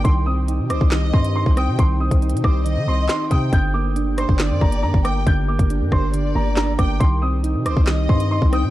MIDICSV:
0, 0, Header, 1, 7, 480
1, 0, Start_track
1, 0, Tempo, 434783
1, 53, Time_signature, 4, 2, 24, 8
1, 9607, End_track
2, 0, Start_track
2, 0, Title_t, "Upright piano"
2, 0, Program_c, 0, 0
2, 47, Note_on_c, 0, 84, 83
2, 245, Note_off_c, 0, 84, 0
2, 288, Note_on_c, 0, 87, 77
2, 742, Note_off_c, 0, 87, 0
2, 771, Note_on_c, 0, 86, 77
2, 1223, Note_off_c, 0, 86, 0
2, 1251, Note_on_c, 0, 84, 73
2, 1447, Note_off_c, 0, 84, 0
2, 1497, Note_on_c, 0, 84, 79
2, 1691, Note_off_c, 0, 84, 0
2, 1734, Note_on_c, 0, 87, 77
2, 1929, Note_off_c, 0, 87, 0
2, 1978, Note_on_c, 0, 84, 88
2, 2172, Note_off_c, 0, 84, 0
2, 2211, Note_on_c, 0, 87, 73
2, 2664, Note_off_c, 0, 87, 0
2, 2697, Note_on_c, 0, 86, 82
2, 3146, Note_off_c, 0, 86, 0
2, 3180, Note_on_c, 0, 84, 75
2, 3372, Note_off_c, 0, 84, 0
2, 3420, Note_on_c, 0, 84, 86
2, 3612, Note_off_c, 0, 84, 0
2, 3653, Note_on_c, 0, 87, 76
2, 3848, Note_off_c, 0, 87, 0
2, 3899, Note_on_c, 0, 91, 82
2, 4092, Note_off_c, 0, 91, 0
2, 4128, Note_on_c, 0, 86, 75
2, 4582, Note_off_c, 0, 86, 0
2, 4622, Note_on_c, 0, 84, 79
2, 5069, Note_off_c, 0, 84, 0
2, 5093, Note_on_c, 0, 82, 78
2, 5288, Note_off_c, 0, 82, 0
2, 5328, Note_on_c, 0, 82, 89
2, 5526, Note_off_c, 0, 82, 0
2, 5571, Note_on_c, 0, 86, 88
2, 5768, Note_off_c, 0, 86, 0
2, 5818, Note_on_c, 0, 91, 87
2, 6011, Note_off_c, 0, 91, 0
2, 6054, Note_on_c, 0, 86, 71
2, 6505, Note_off_c, 0, 86, 0
2, 6537, Note_on_c, 0, 84, 77
2, 6987, Note_off_c, 0, 84, 0
2, 7014, Note_on_c, 0, 82, 81
2, 7209, Note_off_c, 0, 82, 0
2, 7249, Note_on_c, 0, 82, 82
2, 7446, Note_off_c, 0, 82, 0
2, 7492, Note_on_c, 0, 86, 82
2, 7688, Note_off_c, 0, 86, 0
2, 7728, Note_on_c, 0, 84, 88
2, 7925, Note_off_c, 0, 84, 0
2, 7969, Note_on_c, 0, 87, 79
2, 8422, Note_off_c, 0, 87, 0
2, 8454, Note_on_c, 0, 86, 78
2, 8905, Note_off_c, 0, 86, 0
2, 8931, Note_on_c, 0, 84, 75
2, 9127, Note_off_c, 0, 84, 0
2, 9177, Note_on_c, 0, 84, 80
2, 9371, Note_off_c, 0, 84, 0
2, 9414, Note_on_c, 0, 87, 77
2, 9607, Note_off_c, 0, 87, 0
2, 9607, End_track
3, 0, Start_track
3, 0, Title_t, "Violin section"
3, 0, Program_c, 1, 48
3, 773, Note_on_c, 1, 72, 84
3, 1001, Note_off_c, 1, 72, 0
3, 1011, Note_on_c, 1, 75, 98
3, 1689, Note_off_c, 1, 75, 0
3, 1735, Note_on_c, 1, 79, 83
3, 1963, Note_off_c, 1, 79, 0
3, 2692, Note_on_c, 1, 72, 87
3, 2921, Note_off_c, 1, 72, 0
3, 2933, Note_on_c, 1, 75, 106
3, 3610, Note_off_c, 1, 75, 0
3, 3650, Note_on_c, 1, 79, 87
3, 3880, Note_off_c, 1, 79, 0
3, 4612, Note_on_c, 1, 72, 85
3, 4841, Note_off_c, 1, 72, 0
3, 4856, Note_on_c, 1, 74, 102
3, 5532, Note_off_c, 1, 74, 0
3, 5571, Note_on_c, 1, 79, 91
3, 5800, Note_off_c, 1, 79, 0
3, 6535, Note_on_c, 1, 72, 81
3, 6762, Note_off_c, 1, 72, 0
3, 6777, Note_on_c, 1, 74, 94
3, 7452, Note_off_c, 1, 74, 0
3, 7496, Note_on_c, 1, 79, 92
3, 7723, Note_off_c, 1, 79, 0
3, 8453, Note_on_c, 1, 72, 85
3, 8681, Note_off_c, 1, 72, 0
3, 8692, Note_on_c, 1, 75, 96
3, 9369, Note_off_c, 1, 75, 0
3, 9416, Note_on_c, 1, 79, 83
3, 9607, Note_off_c, 1, 79, 0
3, 9607, End_track
4, 0, Start_track
4, 0, Title_t, "Ambient pad"
4, 0, Program_c, 2, 92
4, 0, Note_on_c, 2, 67, 76
4, 52, Note_on_c, 2, 63, 83
4, 52, Note_on_c, 2, 79, 91
4, 53, Note_on_c, 2, 72, 79
4, 3849, Note_off_c, 2, 67, 0
4, 3855, Note_off_c, 2, 63, 0
4, 3855, Note_off_c, 2, 72, 0
4, 3894, Note_on_c, 2, 62, 83
4, 3894, Note_on_c, 2, 67, 76
4, 3895, Note_on_c, 2, 70, 76
4, 7696, Note_off_c, 2, 62, 0
4, 7696, Note_off_c, 2, 70, 0
4, 7733, Note_on_c, 2, 63, 84
4, 7734, Note_on_c, 2, 72, 79
4, 9607, Note_off_c, 2, 63, 0
4, 9607, Note_off_c, 2, 67, 0
4, 9607, Note_off_c, 2, 72, 0
4, 9607, Note_off_c, 2, 79, 0
4, 9607, End_track
5, 0, Start_track
5, 0, Title_t, "Synth keys"
5, 0, Program_c, 3, 88
5, 0, Control_c, 3, 64, 127
5, 55, Note_on_c, 3, 51, 100
5, 67, Control_c, 3, 64, 0
5, 229, Control_c, 3, 64, 127
5, 298, Note_on_c, 3, 60, 85
5, 531, Note_on_c, 3, 63, 95
5, 772, Note_on_c, 3, 75, 86
5, 1002, Note_off_c, 3, 51, 0
5, 1015, Note_on_c, 3, 51, 94
5, 1242, Note_off_c, 3, 60, 0
5, 1255, Note_on_c, 3, 60, 82
5, 1482, Note_off_c, 3, 63, 0
5, 1496, Note_on_c, 3, 63, 92
5, 1721, Note_off_c, 3, 60, 0
5, 1734, Note_on_c, 3, 60, 90
5, 1959, Note_off_c, 3, 51, 0
5, 1972, Note_on_c, 3, 51, 104
5, 1973, Note_off_c, 3, 75, 0
5, 2195, Note_off_c, 3, 60, 0
5, 2208, Note_on_c, 3, 60, 82
5, 2443, Note_off_c, 3, 63, 0
5, 2456, Note_on_c, 3, 63, 90
5, 2693, Note_on_c, 3, 75, 97
5, 2923, Note_off_c, 3, 51, 0
5, 2936, Note_on_c, 3, 51, 89
5, 3158, Note_off_c, 3, 60, 0
5, 3171, Note_on_c, 3, 60, 83
5, 3399, Note_off_c, 3, 63, 0
5, 3412, Note_on_c, 3, 63, 96
5, 3640, Note_off_c, 3, 60, 0
5, 3653, Note_on_c, 3, 60, 81
5, 3893, Note_off_c, 3, 60, 0
5, 3893, Note_off_c, 3, 63, 0
5, 3893, Note_off_c, 3, 75, 0
5, 3893, Note_on_c, 3, 50, 103
5, 3895, Note_off_c, 3, 51, 0
5, 3908, Control_c, 3, 64, 0
5, 4117, Control_c, 3, 64, 127
5, 4133, Note_on_c, 3, 58, 85
5, 4373, Note_on_c, 3, 62, 89
5, 4614, Note_on_c, 3, 74, 83
5, 4840, Note_off_c, 3, 50, 0
5, 4854, Note_on_c, 3, 50, 91
5, 5081, Note_off_c, 3, 58, 0
5, 5094, Note_on_c, 3, 58, 86
5, 5320, Note_off_c, 3, 62, 0
5, 5333, Note_on_c, 3, 62, 86
5, 5562, Note_off_c, 3, 58, 0
5, 5576, Note_on_c, 3, 58, 82
5, 5800, Note_off_c, 3, 50, 0
5, 5813, Note_on_c, 3, 50, 96
5, 5814, Note_off_c, 3, 74, 0
5, 6045, Note_off_c, 3, 58, 0
5, 6058, Note_on_c, 3, 58, 84
5, 6283, Note_off_c, 3, 62, 0
5, 6296, Note_on_c, 3, 62, 95
5, 6534, Note_on_c, 3, 74, 88
5, 6762, Note_off_c, 3, 50, 0
5, 6775, Note_on_c, 3, 50, 94
5, 6999, Note_off_c, 3, 58, 0
5, 7012, Note_on_c, 3, 58, 88
5, 7238, Note_off_c, 3, 62, 0
5, 7252, Note_on_c, 3, 62, 92
5, 7481, Note_off_c, 3, 58, 0
5, 7494, Note_on_c, 3, 58, 81
5, 7733, Note_off_c, 3, 62, 0
5, 7734, Note_off_c, 3, 50, 0
5, 7734, Note_off_c, 3, 58, 0
5, 7734, Note_off_c, 3, 74, 0
5, 7734, Note_on_c, 3, 51, 95
5, 7749, Control_c, 3, 64, 0
5, 7929, Control_c, 3, 64, 127
5, 7978, Note_on_c, 3, 60, 84
5, 8211, Note_on_c, 3, 63, 96
5, 8452, Note_on_c, 3, 75, 89
5, 8682, Note_off_c, 3, 51, 0
5, 8696, Note_on_c, 3, 51, 92
5, 8923, Note_off_c, 3, 60, 0
5, 8936, Note_on_c, 3, 60, 83
5, 9164, Note_off_c, 3, 63, 0
5, 9177, Note_on_c, 3, 63, 92
5, 9401, Note_off_c, 3, 60, 0
5, 9414, Note_on_c, 3, 60, 91
5, 9607, Note_off_c, 3, 51, 0
5, 9607, Note_off_c, 3, 60, 0
5, 9607, Note_off_c, 3, 63, 0
5, 9607, Note_off_c, 3, 75, 0
5, 9607, End_track
6, 0, Start_track
6, 0, Title_t, "808-style bass"
6, 0, Program_c, 4, 38
6, 53, Note_on_c, 4, 36, 108
6, 654, Note_on_c, 4, 48, 105
6, 670, Note_off_c, 4, 36, 0
6, 774, Note_on_c, 4, 36, 96
6, 790, Note_off_c, 4, 48, 0
6, 888, Note_off_c, 4, 36, 0
6, 895, Note_on_c, 4, 36, 105
6, 1240, Note_off_c, 4, 36, 0
6, 1254, Note_on_c, 4, 43, 98
6, 1599, Note_off_c, 4, 43, 0
6, 1614, Note_on_c, 4, 36, 108
6, 1854, Note_on_c, 4, 48, 101
6, 1870, Note_off_c, 4, 36, 0
6, 1968, Note_off_c, 4, 48, 0
6, 1974, Note_on_c, 4, 36, 115
6, 2319, Note_off_c, 4, 36, 0
6, 2333, Note_on_c, 4, 36, 106
6, 2574, Note_on_c, 4, 48, 99
6, 2590, Note_off_c, 4, 36, 0
6, 2688, Note_off_c, 4, 48, 0
6, 2694, Note_on_c, 4, 36, 103
6, 3054, Note_on_c, 4, 51, 104
6, 3070, Note_off_c, 4, 36, 0
6, 3168, Note_off_c, 4, 51, 0
6, 3174, Note_on_c, 4, 36, 98
6, 3404, Note_off_c, 4, 36, 0
6, 3653, Note_on_c, 4, 48, 107
6, 3884, Note_off_c, 4, 48, 0
6, 3893, Note_on_c, 4, 31, 111
6, 4700, Note_off_c, 4, 31, 0
6, 4734, Note_on_c, 4, 31, 107
6, 4974, Note_on_c, 4, 43, 106
6, 4990, Note_off_c, 4, 31, 0
6, 5088, Note_off_c, 4, 43, 0
6, 5093, Note_on_c, 4, 31, 105
6, 5334, Note_on_c, 4, 43, 99
6, 5351, Note_off_c, 4, 31, 0
6, 5448, Note_off_c, 4, 43, 0
6, 5454, Note_on_c, 4, 31, 103
6, 5799, Note_off_c, 4, 31, 0
6, 5814, Note_on_c, 4, 31, 112
6, 6159, Note_off_c, 4, 31, 0
6, 6173, Note_on_c, 4, 31, 104
6, 6414, Note_on_c, 4, 43, 103
6, 6431, Note_off_c, 4, 31, 0
6, 6528, Note_off_c, 4, 43, 0
6, 6534, Note_on_c, 4, 31, 101
6, 6995, Note_off_c, 4, 31, 0
6, 7014, Note_on_c, 4, 31, 99
6, 7474, Note_off_c, 4, 31, 0
6, 7494, Note_on_c, 4, 31, 104
6, 7724, Note_off_c, 4, 31, 0
6, 7734, Note_on_c, 4, 36, 107
6, 8334, Note_on_c, 4, 48, 102
6, 8351, Note_off_c, 4, 36, 0
6, 8454, Note_on_c, 4, 36, 95
6, 8470, Note_off_c, 4, 48, 0
6, 8568, Note_off_c, 4, 36, 0
6, 8575, Note_on_c, 4, 36, 103
6, 8920, Note_off_c, 4, 36, 0
6, 8934, Note_on_c, 4, 43, 106
6, 9279, Note_off_c, 4, 43, 0
6, 9294, Note_on_c, 4, 36, 112
6, 9534, Note_on_c, 4, 48, 101
6, 9550, Note_off_c, 4, 36, 0
6, 9607, Note_off_c, 4, 48, 0
6, 9607, End_track
7, 0, Start_track
7, 0, Title_t, "Drums"
7, 53, Note_on_c, 9, 36, 117
7, 53, Note_on_c, 9, 42, 78
7, 164, Note_off_c, 9, 36, 0
7, 164, Note_off_c, 9, 42, 0
7, 534, Note_on_c, 9, 42, 81
7, 644, Note_off_c, 9, 42, 0
7, 774, Note_on_c, 9, 37, 94
7, 774, Note_on_c, 9, 42, 90
7, 884, Note_off_c, 9, 42, 0
7, 885, Note_off_c, 9, 37, 0
7, 894, Note_on_c, 9, 36, 93
7, 1005, Note_off_c, 9, 36, 0
7, 1007, Note_on_c, 9, 39, 99
7, 1014, Note_on_c, 9, 38, 127
7, 1014, Note_on_c, 9, 42, 87
7, 1117, Note_off_c, 9, 39, 0
7, 1124, Note_off_c, 9, 38, 0
7, 1124, Note_off_c, 9, 42, 0
7, 1254, Note_on_c, 9, 36, 99
7, 1364, Note_off_c, 9, 36, 0
7, 1373, Note_on_c, 9, 42, 76
7, 1484, Note_off_c, 9, 42, 0
7, 1614, Note_on_c, 9, 36, 95
7, 1724, Note_off_c, 9, 36, 0
7, 1733, Note_on_c, 9, 37, 86
7, 1733, Note_on_c, 9, 42, 72
7, 1844, Note_off_c, 9, 37, 0
7, 1844, Note_off_c, 9, 42, 0
7, 1973, Note_on_c, 9, 36, 122
7, 1973, Note_on_c, 9, 42, 80
7, 2084, Note_off_c, 9, 36, 0
7, 2084, Note_off_c, 9, 42, 0
7, 2333, Note_on_c, 9, 36, 97
7, 2333, Note_on_c, 9, 42, 84
7, 2443, Note_off_c, 9, 36, 0
7, 2444, Note_off_c, 9, 42, 0
7, 2453, Note_on_c, 9, 42, 48
7, 2533, Note_off_c, 9, 42, 0
7, 2533, Note_on_c, 9, 42, 66
7, 2613, Note_off_c, 9, 42, 0
7, 2613, Note_on_c, 9, 42, 78
7, 2694, Note_on_c, 9, 36, 100
7, 2695, Note_on_c, 9, 37, 95
7, 2724, Note_off_c, 9, 42, 0
7, 2804, Note_off_c, 9, 36, 0
7, 2805, Note_off_c, 9, 37, 0
7, 2934, Note_on_c, 9, 42, 89
7, 3044, Note_off_c, 9, 42, 0
7, 3407, Note_on_c, 9, 39, 81
7, 3414, Note_on_c, 9, 38, 101
7, 3414, Note_on_c, 9, 42, 85
7, 3517, Note_off_c, 9, 39, 0
7, 3524, Note_off_c, 9, 38, 0
7, 3524, Note_off_c, 9, 42, 0
7, 3653, Note_on_c, 9, 36, 94
7, 3653, Note_on_c, 9, 42, 74
7, 3764, Note_off_c, 9, 36, 0
7, 3764, Note_off_c, 9, 42, 0
7, 3893, Note_on_c, 9, 36, 121
7, 3893, Note_on_c, 9, 42, 82
7, 4004, Note_off_c, 9, 36, 0
7, 4004, Note_off_c, 9, 42, 0
7, 4373, Note_on_c, 9, 42, 77
7, 4484, Note_off_c, 9, 42, 0
7, 4614, Note_on_c, 9, 37, 98
7, 4614, Note_on_c, 9, 42, 87
7, 4724, Note_off_c, 9, 42, 0
7, 4725, Note_off_c, 9, 37, 0
7, 4734, Note_on_c, 9, 36, 92
7, 4845, Note_off_c, 9, 36, 0
7, 4846, Note_on_c, 9, 39, 100
7, 4854, Note_on_c, 9, 38, 123
7, 4854, Note_on_c, 9, 42, 91
7, 4957, Note_off_c, 9, 39, 0
7, 4964, Note_off_c, 9, 38, 0
7, 4964, Note_off_c, 9, 42, 0
7, 5094, Note_on_c, 9, 36, 101
7, 5204, Note_off_c, 9, 36, 0
7, 5214, Note_on_c, 9, 42, 80
7, 5324, Note_off_c, 9, 42, 0
7, 5454, Note_on_c, 9, 36, 99
7, 5564, Note_off_c, 9, 36, 0
7, 5574, Note_on_c, 9, 37, 90
7, 5574, Note_on_c, 9, 42, 72
7, 5684, Note_off_c, 9, 37, 0
7, 5684, Note_off_c, 9, 42, 0
7, 5814, Note_on_c, 9, 36, 118
7, 5814, Note_on_c, 9, 42, 80
7, 5924, Note_off_c, 9, 36, 0
7, 5925, Note_off_c, 9, 42, 0
7, 6173, Note_on_c, 9, 36, 97
7, 6175, Note_on_c, 9, 42, 81
7, 6284, Note_off_c, 9, 36, 0
7, 6285, Note_off_c, 9, 42, 0
7, 6295, Note_on_c, 9, 42, 78
7, 6405, Note_off_c, 9, 42, 0
7, 6534, Note_on_c, 9, 36, 97
7, 6535, Note_on_c, 9, 37, 97
7, 6645, Note_off_c, 9, 36, 0
7, 6646, Note_off_c, 9, 37, 0
7, 6774, Note_on_c, 9, 42, 90
7, 6885, Note_off_c, 9, 42, 0
7, 7247, Note_on_c, 9, 39, 83
7, 7254, Note_on_c, 9, 38, 100
7, 7254, Note_on_c, 9, 42, 88
7, 7358, Note_off_c, 9, 39, 0
7, 7364, Note_off_c, 9, 42, 0
7, 7365, Note_off_c, 9, 38, 0
7, 7494, Note_on_c, 9, 36, 93
7, 7494, Note_on_c, 9, 37, 90
7, 7494, Note_on_c, 9, 42, 74
7, 7604, Note_off_c, 9, 36, 0
7, 7604, Note_off_c, 9, 37, 0
7, 7604, Note_off_c, 9, 42, 0
7, 7734, Note_on_c, 9, 36, 123
7, 7734, Note_on_c, 9, 42, 80
7, 7844, Note_off_c, 9, 36, 0
7, 7845, Note_off_c, 9, 42, 0
7, 8214, Note_on_c, 9, 42, 80
7, 8324, Note_off_c, 9, 42, 0
7, 8454, Note_on_c, 9, 42, 91
7, 8455, Note_on_c, 9, 37, 94
7, 8564, Note_off_c, 9, 42, 0
7, 8565, Note_off_c, 9, 37, 0
7, 8575, Note_on_c, 9, 36, 94
7, 8685, Note_off_c, 9, 36, 0
7, 8686, Note_on_c, 9, 39, 100
7, 8693, Note_on_c, 9, 38, 124
7, 8694, Note_on_c, 9, 42, 89
7, 8797, Note_off_c, 9, 39, 0
7, 8804, Note_off_c, 9, 38, 0
7, 8804, Note_off_c, 9, 42, 0
7, 8934, Note_on_c, 9, 36, 98
7, 9044, Note_off_c, 9, 36, 0
7, 9054, Note_on_c, 9, 42, 76
7, 9164, Note_off_c, 9, 42, 0
7, 9294, Note_on_c, 9, 36, 96
7, 9404, Note_off_c, 9, 36, 0
7, 9414, Note_on_c, 9, 37, 92
7, 9414, Note_on_c, 9, 42, 72
7, 9524, Note_off_c, 9, 37, 0
7, 9524, Note_off_c, 9, 42, 0
7, 9607, End_track
0, 0, End_of_file